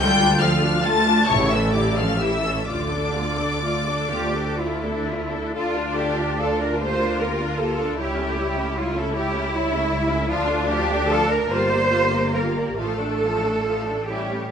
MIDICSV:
0, 0, Header, 1, 6, 480
1, 0, Start_track
1, 0, Key_signature, -1, "minor"
1, 0, Tempo, 839161
1, 8, Time_signature, 6, 3, 24, 8
1, 488, Tempo, 898204
1, 968, Tempo, 949367
1, 2888, Tempo, 825309
1, 3848, Tempo, 776197
1, 6248, Tempo, 819672
1, 6728, Tempo, 873362
1, 8164, End_track
2, 0, Start_track
2, 0, Title_t, "Violin section"
2, 0, Program_c, 0, 48
2, 0, Note_on_c, 0, 91, 127
2, 222, Note_off_c, 0, 91, 0
2, 229, Note_on_c, 0, 89, 112
2, 477, Note_on_c, 0, 93, 123
2, 481, Note_off_c, 0, 89, 0
2, 708, Note_on_c, 0, 85, 122
2, 720, Note_off_c, 0, 93, 0
2, 837, Note_off_c, 0, 85, 0
2, 838, Note_on_c, 0, 88, 111
2, 956, Note_on_c, 0, 86, 92
2, 964, Note_off_c, 0, 88, 0
2, 1075, Note_on_c, 0, 89, 99
2, 1076, Note_off_c, 0, 86, 0
2, 1191, Note_on_c, 0, 88, 113
2, 1196, Note_off_c, 0, 89, 0
2, 1433, Note_off_c, 0, 88, 0
2, 1433, Note_on_c, 0, 86, 103
2, 2650, Note_off_c, 0, 86, 0
2, 2897, Note_on_c, 0, 77, 68
2, 3009, Note_off_c, 0, 77, 0
2, 3015, Note_on_c, 0, 74, 60
2, 3137, Note_off_c, 0, 74, 0
2, 3140, Note_on_c, 0, 77, 61
2, 3259, Note_off_c, 0, 77, 0
2, 3261, Note_on_c, 0, 74, 57
2, 3378, Note_on_c, 0, 77, 61
2, 3379, Note_off_c, 0, 74, 0
2, 3488, Note_off_c, 0, 77, 0
2, 3499, Note_on_c, 0, 74, 53
2, 3615, Note_off_c, 0, 74, 0
2, 3616, Note_on_c, 0, 70, 64
2, 3724, Note_off_c, 0, 70, 0
2, 3735, Note_on_c, 0, 74, 61
2, 3848, Note_off_c, 0, 74, 0
2, 3852, Note_on_c, 0, 70, 54
2, 3970, Note_off_c, 0, 70, 0
2, 3970, Note_on_c, 0, 74, 57
2, 4088, Note_off_c, 0, 74, 0
2, 4091, Note_on_c, 0, 70, 63
2, 4200, Note_off_c, 0, 70, 0
2, 4216, Note_on_c, 0, 74, 62
2, 4332, Note_off_c, 0, 74, 0
2, 4340, Note_on_c, 0, 73, 69
2, 4447, Note_off_c, 0, 73, 0
2, 4457, Note_on_c, 0, 76, 57
2, 4575, Note_off_c, 0, 76, 0
2, 4583, Note_on_c, 0, 73, 64
2, 4698, Note_off_c, 0, 73, 0
2, 4702, Note_on_c, 0, 76, 58
2, 4817, Note_off_c, 0, 76, 0
2, 4822, Note_on_c, 0, 73, 62
2, 4928, Note_off_c, 0, 73, 0
2, 4938, Note_on_c, 0, 76, 61
2, 5049, Note_on_c, 0, 73, 68
2, 5053, Note_off_c, 0, 76, 0
2, 5167, Note_off_c, 0, 73, 0
2, 5173, Note_on_c, 0, 76, 65
2, 5287, Note_off_c, 0, 76, 0
2, 5292, Note_on_c, 0, 73, 64
2, 5398, Note_off_c, 0, 73, 0
2, 5411, Note_on_c, 0, 76, 72
2, 5525, Note_off_c, 0, 76, 0
2, 5530, Note_on_c, 0, 73, 71
2, 5644, Note_off_c, 0, 73, 0
2, 5649, Note_on_c, 0, 76, 66
2, 5764, Note_off_c, 0, 76, 0
2, 5766, Note_on_c, 0, 77, 83
2, 5874, Note_off_c, 0, 77, 0
2, 5887, Note_on_c, 0, 74, 66
2, 6004, Note_off_c, 0, 74, 0
2, 6006, Note_on_c, 0, 77, 72
2, 6125, Note_off_c, 0, 77, 0
2, 6129, Note_on_c, 0, 74, 70
2, 6249, Note_off_c, 0, 74, 0
2, 6257, Note_on_c, 0, 77, 73
2, 6362, Note_off_c, 0, 77, 0
2, 6377, Note_on_c, 0, 74, 62
2, 6490, Note_off_c, 0, 74, 0
2, 6491, Note_on_c, 0, 77, 75
2, 6600, Note_off_c, 0, 77, 0
2, 6619, Note_on_c, 0, 74, 71
2, 6734, Note_off_c, 0, 74, 0
2, 6739, Note_on_c, 0, 77, 61
2, 6850, Note_off_c, 0, 77, 0
2, 6859, Note_on_c, 0, 74, 57
2, 6970, Note_off_c, 0, 74, 0
2, 6971, Note_on_c, 0, 77, 64
2, 7079, Note_off_c, 0, 77, 0
2, 7096, Note_on_c, 0, 74, 60
2, 7211, Note_off_c, 0, 74, 0
2, 7212, Note_on_c, 0, 77, 66
2, 7322, Note_off_c, 0, 77, 0
2, 7338, Note_on_c, 0, 74, 51
2, 7453, Note_off_c, 0, 74, 0
2, 7458, Note_on_c, 0, 77, 51
2, 7573, Note_off_c, 0, 77, 0
2, 7582, Note_on_c, 0, 74, 45
2, 7693, Note_off_c, 0, 74, 0
2, 7708, Note_on_c, 0, 77, 48
2, 7808, Note_off_c, 0, 77, 0
2, 7812, Note_on_c, 0, 74, 43
2, 7927, Note_off_c, 0, 74, 0
2, 7928, Note_on_c, 0, 76, 54
2, 8038, Note_off_c, 0, 76, 0
2, 8050, Note_on_c, 0, 73, 48
2, 8164, Note_off_c, 0, 73, 0
2, 8164, End_track
3, 0, Start_track
3, 0, Title_t, "Violin section"
3, 0, Program_c, 1, 48
3, 8, Note_on_c, 1, 79, 127
3, 227, Note_off_c, 1, 79, 0
3, 240, Note_on_c, 1, 77, 102
3, 486, Note_off_c, 1, 77, 0
3, 487, Note_on_c, 1, 81, 122
3, 723, Note_on_c, 1, 73, 109
3, 725, Note_off_c, 1, 81, 0
3, 839, Note_on_c, 1, 76, 93
3, 845, Note_off_c, 1, 73, 0
3, 964, Note_off_c, 1, 76, 0
3, 964, Note_on_c, 1, 74, 94
3, 1080, Note_on_c, 1, 77, 86
3, 1082, Note_off_c, 1, 74, 0
3, 1196, Note_on_c, 1, 76, 78
3, 1199, Note_off_c, 1, 77, 0
3, 1435, Note_on_c, 1, 74, 86
3, 1436, Note_off_c, 1, 76, 0
3, 2651, Note_off_c, 1, 74, 0
3, 2893, Note_on_c, 1, 62, 89
3, 3593, Note_off_c, 1, 62, 0
3, 3610, Note_on_c, 1, 65, 88
3, 4325, Note_off_c, 1, 65, 0
3, 4334, Note_on_c, 1, 64, 75
3, 5042, Note_off_c, 1, 64, 0
3, 5049, Note_on_c, 1, 64, 97
3, 5745, Note_off_c, 1, 64, 0
3, 5763, Note_on_c, 1, 62, 108
3, 6471, Note_off_c, 1, 62, 0
3, 6487, Note_on_c, 1, 58, 86
3, 7192, Note_off_c, 1, 58, 0
3, 7213, Note_on_c, 1, 57, 71
3, 7867, Note_off_c, 1, 57, 0
3, 7929, Note_on_c, 1, 55, 61
3, 8151, Note_off_c, 1, 55, 0
3, 8164, End_track
4, 0, Start_track
4, 0, Title_t, "Cello section"
4, 0, Program_c, 2, 48
4, 9, Note_on_c, 2, 55, 126
4, 227, Note_off_c, 2, 55, 0
4, 242, Note_on_c, 2, 53, 102
4, 483, Note_on_c, 2, 57, 112
4, 488, Note_off_c, 2, 53, 0
4, 715, Note_on_c, 2, 49, 99
4, 723, Note_off_c, 2, 57, 0
4, 839, Note_off_c, 2, 49, 0
4, 840, Note_on_c, 2, 52, 101
4, 965, Note_off_c, 2, 52, 0
4, 965, Note_on_c, 2, 50, 86
4, 1078, Note_on_c, 2, 53, 94
4, 1080, Note_off_c, 2, 50, 0
4, 1196, Note_on_c, 2, 52, 95
4, 1197, Note_off_c, 2, 53, 0
4, 1435, Note_on_c, 2, 50, 89
4, 1436, Note_off_c, 2, 52, 0
4, 2146, Note_off_c, 2, 50, 0
4, 2160, Note_on_c, 2, 67, 98
4, 2387, Note_off_c, 2, 67, 0
4, 2405, Note_on_c, 2, 64, 91
4, 2886, Note_off_c, 2, 64, 0
4, 2891, Note_on_c, 2, 65, 98
4, 3132, Note_off_c, 2, 65, 0
4, 3136, Note_on_c, 2, 67, 82
4, 3376, Note_off_c, 2, 67, 0
4, 3382, Note_on_c, 2, 69, 90
4, 3498, Note_off_c, 2, 69, 0
4, 3506, Note_on_c, 2, 70, 87
4, 3617, Note_off_c, 2, 70, 0
4, 3621, Note_on_c, 2, 72, 110
4, 3846, Note_off_c, 2, 72, 0
4, 3849, Note_on_c, 2, 70, 86
4, 4088, Note_off_c, 2, 70, 0
4, 4092, Note_on_c, 2, 69, 92
4, 4330, Note_off_c, 2, 69, 0
4, 4339, Note_on_c, 2, 67, 93
4, 4808, Note_off_c, 2, 67, 0
4, 4817, Note_on_c, 2, 65, 95
4, 4934, Note_off_c, 2, 65, 0
4, 4941, Note_on_c, 2, 69, 98
4, 5054, Note_off_c, 2, 69, 0
4, 5058, Note_on_c, 2, 67, 98
4, 5284, Note_off_c, 2, 67, 0
4, 5294, Note_on_c, 2, 64, 103
4, 5764, Note_off_c, 2, 64, 0
4, 5770, Note_on_c, 2, 65, 102
4, 6006, Note_off_c, 2, 65, 0
4, 6012, Note_on_c, 2, 67, 106
4, 6247, Note_off_c, 2, 67, 0
4, 6253, Note_on_c, 2, 69, 123
4, 6367, Note_off_c, 2, 69, 0
4, 6378, Note_on_c, 2, 70, 106
4, 6490, Note_off_c, 2, 70, 0
4, 6500, Note_on_c, 2, 72, 127
4, 6970, Note_off_c, 2, 72, 0
4, 6976, Note_on_c, 2, 70, 92
4, 7211, Note_off_c, 2, 70, 0
4, 7215, Note_on_c, 2, 69, 101
4, 7929, Note_off_c, 2, 69, 0
4, 7929, Note_on_c, 2, 67, 83
4, 8164, Note_off_c, 2, 67, 0
4, 8164, End_track
5, 0, Start_track
5, 0, Title_t, "Viola section"
5, 0, Program_c, 3, 48
5, 8, Note_on_c, 3, 69, 88
5, 12, Note_on_c, 3, 65, 88
5, 116, Note_off_c, 3, 69, 0
5, 117, Note_off_c, 3, 65, 0
5, 124, Note_on_c, 3, 65, 77
5, 126, Note_on_c, 3, 62, 85
5, 231, Note_off_c, 3, 65, 0
5, 238, Note_on_c, 3, 65, 87
5, 238, Note_on_c, 3, 69, 77
5, 244, Note_off_c, 3, 62, 0
5, 350, Note_off_c, 3, 65, 0
5, 354, Note_on_c, 3, 62, 85
5, 356, Note_on_c, 3, 65, 74
5, 361, Note_off_c, 3, 69, 0
5, 470, Note_off_c, 3, 65, 0
5, 477, Note_on_c, 3, 65, 76
5, 478, Note_on_c, 3, 69, 74
5, 483, Note_off_c, 3, 62, 0
5, 592, Note_off_c, 3, 65, 0
5, 592, Note_off_c, 3, 69, 0
5, 598, Note_on_c, 3, 62, 70
5, 598, Note_on_c, 3, 65, 75
5, 720, Note_on_c, 3, 64, 84
5, 721, Note_off_c, 3, 62, 0
5, 722, Note_off_c, 3, 65, 0
5, 724, Note_on_c, 3, 67, 75
5, 835, Note_off_c, 3, 64, 0
5, 837, Note_off_c, 3, 67, 0
5, 847, Note_on_c, 3, 61, 68
5, 850, Note_on_c, 3, 69, 70
5, 965, Note_on_c, 3, 64, 69
5, 967, Note_on_c, 3, 67, 79
5, 968, Note_off_c, 3, 61, 0
5, 970, Note_off_c, 3, 69, 0
5, 1076, Note_on_c, 3, 69, 74
5, 1077, Note_on_c, 3, 61, 64
5, 1083, Note_off_c, 3, 64, 0
5, 1083, Note_off_c, 3, 67, 0
5, 1192, Note_on_c, 3, 64, 62
5, 1192, Note_on_c, 3, 67, 68
5, 1196, Note_off_c, 3, 69, 0
5, 1197, Note_off_c, 3, 61, 0
5, 1305, Note_off_c, 3, 64, 0
5, 1305, Note_off_c, 3, 67, 0
5, 1311, Note_on_c, 3, 61, 63
5, 1312, Note_on_c, 3, 69, 66
5, 1432, Note_on_c, 3, 57, 65
5, 1434, Note_off_c, 3, 61, 0
5, 1434, Note_on_c, 3, 65, 66
5, 1435, Note_off_c, 3, 69, 0
5, 1547, Note_off_c, 3, 57, 0
5, 1548, Note_off_c, 3, 65, 0
5, 1556, Note_on_c, 3, 69, 61
5, 1557, Note_on_c, 3, 62, 63
5, 1676, Note_on_c, 3, 65, 64
5, 1678, Note_off_c, 3, 69, 0
5, 1678, Note_on_c, 3, 57, 57
5, 1679, Note_off_c, 3, 62, 0
5, 1798, Note_on_c, 3, 62, 63
5, 1798, Note_on_c, 3, 69, 57
5, 1799, Note_off_c, 3, 65, 0
5, 1800, Note_off_c, 3, 57, 0
5, 1915, Note_on_c, 3, 57, 61
5, 1918, Note_on_c, 3, 65, 62
5, 1920, Note_off_c, 3, 62, 0
5, 1920, Note_off_c, 3, 69, 0
5, 2030, Note_off_c, 3, 57, 0
5, 2032, Note_off_c, 3, 65, 0
5, 2042, Note_on_c, 3, 62, 68
5, 2043, Note_on_c, 3, 69, 61
5, 2154, Note_on_c, 3, 65, 74
5, 2155, Note_on_c, 3, 57, 71
5, 2163, Note_off_c, 3, 62, 0
5, 2163, Note_off_c, 3, 69, 0
5, 2280, Note_off_c, 3, 57, 0
5, 2280, Note_off_c, 3, 65, 0
5, 2281, Note_on_c, 3, 62, 59
5, 2281, Note_on_c, 3, 69, 63
5, 2399, Note_on_c, 3, 65, 62
5, 2400, Note_on_c, 3, 57, 59
5, 2404, Note_off_c, 3, 62, 0
5, 2404, Note_off_c, 3, 69, 0
5, 2517, Note_off_c, 3, 57, 0
5, 2517, Note_off_c, 3, 65, 0
5, 2530, Note_on_c, 3, 62, 59
5, 2533, Note_on_c, 3, 69, 57
5, 2653, Note_off_c, 3, 62, 0
5, 2655, Note_off_c, 3, 69, 0
5, 2656, Note_on_c, 3, 57, 62
5, 2656, Note_on_c, 3, 65, 59
5, 2773, Note_on_c, 3, 62, 68
5, 2773, Note_on_c, 3, 69, 64
5, 2775, Note_off_c, 3, 57, 0
5, 2775, Note_off_c, 3, 65, 0
5, 2880, Note_off_c, 3, 69, 0
5, 2886, Note_on_c, 3, 69, 66
5, 2887, Note_off_c, 3, 62, 0
5, 2889, Note_on_c, 3, 65, 69
5, 3003, Note_off_c, 3, 69, 0
5, 3004, Note_off_c, 3, 65, 0
5, 3011, Note_on_c, 3, 65, 62
5, 3014, Note_on_c, 3, 62, 63
5, 3131, Note_off_c, 3, 65, 0
5, 3136, Note_off_c, 3, 62, 0
5, 3138, Note_on_c, 3, 65, 60
5, 3139, Note_on_c, 3, 69, 60
5, 3250, Note_off_c, 3, 65, 0
5, 3257, Note_on_c, 3, 65, 58
5, 3258, Note_off_c, 3, 69, 0
5, 3258, Note_on_c, 3, 62, 66
5, 3371, Note_off_c, 3, 65, 0
5, 3376, Note_on_c, 3, 69, 54
5, 3377, Note_off_c, 3, 62, 0
5, 3378, Note_on_c, 3, 65, 53
5, 3486, Note_off_c, 3, 65, 0
5, 3487, Note_off_c, 3, 69, 0
5, 3493, Note_on_c, 3, 65, 55
5, 3495, Note_on_c, 3, 62, 57
5, 3612, Note_off_c, 3, 65, 0
5, 3612, Note_on_c, 3, 67, 62
5, 3614, Note_off_c, 3, 62, 0
5, 3614, Note_on_c, 3, 58, 66
5, 3722, Note_off_c, 3, 67, 0
5, 3723, Note_off_c, 3, 58, 0
5, 3729, Note_on_c, 3, 62, 61
5, 3732, Note_on_c, 3, 70, 56
5, 3845, Note_off_c, 3, 62, 0
5, 3847, Note_off_c, 3, 70, 0
5, 3848, Note_on_c, 3, 58, 61
5, 3848, Note_on_c, 3, 67, 65
5, 3968, Note_off_c, 3, 58, 0
5, 3968, Note_off_c, 3, 67, 0
5, 3969, Note_on_c, 3, 70, 60
5, 3972, Note_on_c, 3, 62, 58
5, 4087, Note_on_c, 3, 67, 54
5, 4088, Note_off_c, 3, 70, 0
5, 4089, Note_off_c, 3, 62, 0
5, 4089, Note_on_c, 3, 58, 55
5, 4198, Note_off_c, 3, 67, 0
5, 4199, Note_off_c, 3, 58, 0
5, 4209, Note_on_c, 3, 62, 65
5, 4211, Note_on_c, 3, 70, 57
5, 4328, Note_off_c, 3, 62, 0
5, 4329, Note_off_c, 3, 70, 0
5, 4329, Note_on_c, 3, 64, 66
5, 4333, Note_on_c, 3, 55, 60
5, 4441, Note_off_c, 3, 64, 0
5, 4443, Note_off_c, 3, 55, 0
5, 4447, Note_on_c, 3, 57, 67
5, 4447, Note_on_c, 3, 61, 65
5, 4569, Note_off_c, 3, 57, 0
5, 4569, Note_off_c, 3, 61, 0
5, 4573, Note_on_c, 3, 64, 61
5, 4575, Note_on_c, 3, 55, 59
5, 4693, Note_off_c, 3, 64, 0
5, 4694, Note_off_c, 3, 55, 0
5, 4695, Note_on_c, 3, 61, 58
5, 4696, Note_on_c, 3, 57, 58
5, 4814, Note_off_c, 3, 57, 0
5, 4814, Note_off_c, 3, 61, 0
5, 4819, Note_on_c, 3, 64, 57
5, 4820, Note_on_c, 3, 55, 58
5, 4927, Note_off_c, 3, 55, 0
5, 4927, Note_off_c, 3, 64, 0
5, 4932, Note_on_c, 3, 61, 64
5, 4934, Note_on_c, 3, 57, 62
5, 5050, Note_off_c, 3, 61, 0
5, 5051, Note_off_c, 3, 57, 0
5, 5053, Note_on_c, 3, 55, 70
5, 5053, Note_on_c, 3, 64, 67
5, 5169, Note_off_c, 3, 55, 0
5, 5169, Note_off_c, 3, 64, 0
5, 5171, Note_on_c, 3, 57, 63
5, 5173, Note_on_c, 3, 61, 60
5, 5286, Note_off_c, 3, 57, 0
5, 5288, Note_off_c, 3, 61, 0
5, 5289, Note_on_c, 3, 55, 67
5, 5290, Note_on_c, 3, 64, 69
5, 5396, Note_off_c, 3, 55, 0
5, 5397, Note_off_c, 3, 64, 0
5, 5402, Note_on_c, 3, 61, 62
5, 5406, Note_on_c, 3, 57, 68
5, 5521, Note_off_c, 3, 61, 0
5, 5521, Note_on_c, 3, 55, 60
5, 5521, Note_on_c, 3, 64, 61
5, 5523, Note_off_c, 3, 57, 0
5, 5637, Note_on_c, 3, 61, 72
5, 5640, Note_off_c, 3, 55, 0
5, 5640, Note_off_c, 3, 64, 0
5, 5642, Note_on_c, 3, 57, 66
5, 5755, Note_on_c, 3, 53, 74
5, 5755, Note_on_c, 3, 65, 73
5, 5757, Note_off_c, 3, 61, 0
5, 5760, Note_off_c, 3, 57, 0
5, 5869, Note_off_c, 3, 53, 0
5, 5869, Note_off_c, 3, 65, 0
5, 5877, Note_on_c, 3, 57, 71
5, 5877, Note_on_c, 3, 62, 77
5, 5999, Note_off_c, 3, 57, 0
5, 5999, Note_off_c, 3, 62, 0
5, 6000, Note_on_c, 3, 65, 73
5, 6001, Note_on_c, 3, 53, 66
5, 6122, Note_off_c, 3, 65, 0
5, 6123, Note_off_c, 3, 53, 0
5, 6124, Note_on_c, 3, 62, 71
5, 6127, Note_on_c, 3, 57, 70
5, 6247, Note_off_c, 3, 62, 0
5, 6247, Note_on_c, 3, 65, 72
5, 6248, Note_off_c, 3, 57, 0
5, 6248, Note_on_c, 3, 53, 70
5, 6356, Note_off_c, 3, 65, 0
5, 6357, Note_off_c, 3, 53, 0
5, 6360, Note_on_c, 3, 62, 68
5, 6363, Note_on_c, 3, 57, 63
5, 6481, Note_off_c, 3, 62, 0
5, 6482, Note_off_c, 3, 57, 0
5, 6485, Note_on_c, 3, 65, 79
5, 6486, Note_on_c, 3, 55, 80
5, 6596, Note_off_c, 3, 65, 0
5, 6597, Note_off_c, 3, 55, 0
5, 6616, Note_on_c, 3, 58, 69
5, 6616, Note_on_c, 3, 67, 66
5, 6732, Note_off_c, 3, 58, 0
5, 6732, Note_off_c, 3, 67, 0
5, 6734, Note_on_c, 3, 55, 68
5, 6736, Note_on_c, 3, 65, 65
5, 6847, Note_off_c, 3, 55, 0
5, 6848, Note_off_c, 3, 65, 0
5, 6852, Note_on_c, 3, 58, 69
5, 6853, Note_on_c, 3, 67, 63
5, 6966, Note_off_c, 3, 58, 0
5, 6967, Note_off_c, 3, 67, 0
5, 6972, Note_on_c, 3, 55, 52
5, 6973, Note_on_c, 3, 65, 52
5, 7079, Note_off_c, 3, 55, 0
5, 7080, Note_off_c, 3, 65, 0
5, 7090, Note_on_c, 3, 67, 58
5, 7091, Note_on_c, 3, 58, 58
5, 7208, Note_off_c, 3, 67, 0
5, 7209, Note_off_c, 3, 58, 0
5, 7214, Note_on_c, 3, 65, 61
5, 7215, Note_on_c, 3, 53, 56
5, 7323, Note_off_c, 3, 65, 0
5, 7324, Note_off_c, 3, 53, 0
5, 7345, Note_on_c, 3, 62, 58
5, 7347, Note_on_c, 3, 57, 51
5, 7457, Note_off_c, 3, 62, 0
5, 7458, Note_off_c, 3, 57, 0
5, 7464, Note_on_c, 3, 53, 52
5, 7468, Note_on_c, 3, 65, 53
5, 7576, Note_off_c, 3, 53, 0
5, 7578, Note_off_c, 3, 65, 0
5, 7580, Note_on_c, 3, 62, 52
5, 7583, Note_on_c, 3, 57, 51
5, 7692, Note_off_c, 3, 62, 0
5, 7694, Note_off_c, 3, 57, 0
5, 7695, Note_on_c, 3, 53, 46
5, 7697, Note_on_c, 3, 65, 51
5, 7801, Note_off_c, 3, 53, 0
5, 7802, Note_off_c, 3, 65, 0
5, 7819, Note_on_c, 3, 57, 50
5, 7819, Note_on_c, 3, 62, 48
5, 7931, Note_off_c, 3, 57, 0
5, 7931, Note_off_c, 3, 62, 0
5, 7933, Note_on_c, 3, 61, 55
5, 7934, Note_on_c, 3, 64, 56
5, 8040, Note_off_c, 3, 61, 0
5, 8041, Note_off_c, 3, 64, 0
5, 8051, Note_on_c, 3, 61, 48
5, 8052, Note_on_c, 3, 57, 47
5, 8158, Note_off_c, 3, 61, 0
5, 8164, Note_off_c, 3, 57, 0
5, 8164, End_track
6, 0, Start_track
6, 0, Title_t, "Double bass section"
6, 0, Program_c, 4, 48
6, 7, Note_on_c, 4, 38, 103
6, 641, Note_off_c, 4, 38, 0
6, 719, Note_on_c, 4, 33, 114
6, 1350, Note_off_c, 4, 33, 0
6, 1438, Note_on_c, 4, 38, 79
6, 2077, Note_off_c, 4, 38, 0
6, 2159, Note_on_c, 4, 38, 85
6, 2805, Note_off_c, 4, 38, 0
6, 2886, Note_on_c, 4, 38, 71
6, 4302, Note_off_c, 4, 38, 0
6, 4332, Note_on_c, 4, 37, 74
6, 5737, Note_off_c, 4, 37, 0
6, 5757, Note_on_c, 4, 38, 84
6, 6482, Note_off_c, 4, 38, 0
6, 6483, Note_on_c, 4, 31, 95
6, 7190, Note_off_c, 4, 31, 0
6, 7207, Note_on_c, 4, 33, 65
6, 8164, Note_off_c, 4, 33, 0
6, 8164, End_track
0, 0, End_of_file